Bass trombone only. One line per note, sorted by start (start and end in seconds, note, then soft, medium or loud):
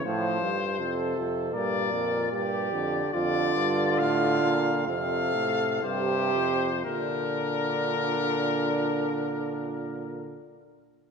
0.05 0.41 A2 medium
0.41 0.80 G2 medium
0.79 1.16 F2 medium
1.17 1.54 F2 medium
1.55 1.94 G2 medium
1.93 2.32 F2 medium
2.32 2.71 G2 medium
2.72 3.01 F2 medium
3.13 3.55 F2 medium
3.55 3.98 G2 medium
3.99 4.42 A2 medium
4.43 4.89 A#2 medium
4.87 5.34 F2 medium
5.34 5.82 A2 medium
5.83 6.33 G2 medium
6.34 6.85 F2 medium
6.86 10.36 A#2 medium